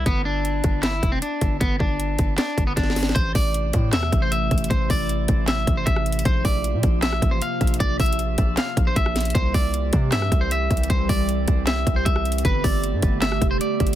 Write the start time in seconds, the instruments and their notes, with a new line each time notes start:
0.06 808-style bass G1, clean electric guitar B3, kick, closed hi-hat
0.25 clean electric guitar D4
0.45 closed hi-hat
0.64 808-style bass G1, kick, cross-stick, closed hi-hat
0.83 clean electric guitar E4, snare, clap, closed hi-hat
1.03 808-style bass F1, kick, closed hi-hat
1.12 clean electric guitar C4
1.22 clean electric guitar D4, closed hi-hat
1.41 808-style bass G1, kick, closed hi-hat
1.60 808-style bass G1, clean electric guitar B3, kick, closed hi-hat
1.79 808-style bass G1, clean electric guitar D4, kick
2.00 closed hi-hat
2.19 808-style bass G1, kick, closed hi-hat
2.38 clean electric guitar D4, snare, clap, closed hi-hat
2.58 808-style bass G1, kick, closed hi-hat
2.67 clean electric guitar B3
2.76 808-style bass G1, clean electric guitar D4, kick, snare, closed hi-hat
2.83 snare
2.90 snare
2.96 snare, open hi-hat
3.03 snare
3.09 snare
3.15 808-style bass A1, ambient pad C3 E3 A3 E4, clean electric guitar C5, kick, closed hi-hat
3.35 808-style bass A1, clean electric guitar D5, kick, open hi-hat
3.54 closed hi-hat
3.73 808-style bass A2, kick, closed hi-hat
3.93 808-style bass E2, clean electric guitar E5, snare, clap, closed hi-hat
4.03 cross-stick
4.12 808-style bass A1, kick, closed hi-hat
4.22 clean electric guitar C5
4.32 clean electric guitar E5, closed hi-hat
4.51 808-style bass A1, kick, closed hi-hat
4.58 closed hi-hat
4.64 closed hi-hat
4.70 808-style bass A1, clean electric guitar C5, kick, closed hi-hat
4.90 808-style bass A1, clean electric guitar D5, kick, open hi-hat
5.09 closed hi-hat
5.28 808-style bass A1, kick, closed hi-hat
5.48 clean electric guitar E5, snare, clap, closed hi-hat
5.67 808-style bass A1, kick, closed hi-hat
5.77 clean electric guitar C5
5.86 808-style bass A1, clean electric guitar E5, kick, closed hi-hat
5.96 cross-stick
6.06 closed hi-hat
6.12 closed hi-hat
6.19 closed hi-hat
6.25 808-style bass A#1, ambient pad C3 F3 A#3 F4, clean electric guitar C5, kick, closed hi-hat
6.45 808-style bass A#1, clean electric guitar D5, kick, open hi-hat
6.64 closed hi-hat
6.74 808-style bass A#2
6.83 808-style bass A#1, kick, closed hi-hat
7.02 clean electric guitar E5, snare, clap, closed hi-hat
7.13 cross-stick
7.22 808-style bass A1, kick, closed hi-hat
7.31 clean electric guitar C5
7.42 clean electric guitar F5, closed hi-hat
7.61 808-style bass A#1, kick, closed hi-hat
7.67 closed hi-hat
7.74 closed hi-hat
7.80 808-style bass A#1, clean electric guitar D5, kick, closed hi-hat
8.00 808-style bass A#1, clean electric guitar E5, kick, closed hi-hat, open hi-hat
8.06 closed hi-hat
8.12 closed hi-hat
8.19 closed hi-hat
8.38 808-style bass A#1, kick, closed hi-hat
8.57 clean electric guitar F5, snare, clap, closed hi-hat
8.77 808-style bass A#1, kick, closed hi-hat
8.87 clean electric guitar C5
8.96 808-style bass A#1, clean electric guitar E5, kick, closed hi-hat
9.06 cross-stick
9.16 snare, closed hi-hat
9.21 closed hi-hat
9.25 closed hi-hat
9.30 closed hi-hat
9.35 808-style bass C2, ambient pad E3 G3 C4 G4, clean electric guitar C5, kick, closed hi-hat
9.54 808-style bass C2, clean electric guitar D5, kick, open hi-hat
9.74 closed hi-hat
9.93 808-style bass C3, kick, closed hi-hat
10.12 808-style bass G2, clean electric guitar E5, snare, clap, closed hi-hat
10.22 cross-stick
10.32 808-style bass C2, kick, closed hi-hat
10.41 clean electric guitar C5
10.51 clean electric guitar E5, closed hi-hat
10.71 808-style bass C2, kick, closed hi-hat
10.77 closed hi-hat
10.83 closed hi-hat
10.90 808-style bass C2, clean electric guitar C5, kick, closed hi-hat
11.09 808-style bass C2, clean electric guitar D5, kick, open hi-hat
11.29 closed hi-hat
11.48 808-style bass C2, kick, closed hi-hat
11.67 clean electric guitar E5, snare, clap, closed hi-hat
11.87 808-style bass C2, kick, closed hi-hat
11.96 clean electric guitar C5
12.05 808-style bass C2, clean electric guitar E5, kick, closed hi-hat
12.16 cross-stick
12.25 closed hi-hat
12.32 closed hi-hat
12.38 closed hi-hat
12.45 808-style bass G1, ambient pad D3 A3 B3, clean electric guitar B4, kick, closed hi-hat
12.64 808-style bass G1, clean electric guitar D5, kick, open hi-hat
12.84 closed hi-hat
12.93 808-style bass G2
13.02 808-style bass G1, kick, closed hi-hat
13.22 clean electric guitar E5, snare, clap, closed hi-hat
13.32 cross-stick
13.42 808-style bass F1, kick, closed hi-hat
13.51 clean electric guitar C5
13.61 clean electric guitar D5, closed hi-hat
13.80 808-style bass G1, kick, closed hi-hat
13.87 closed hi-hat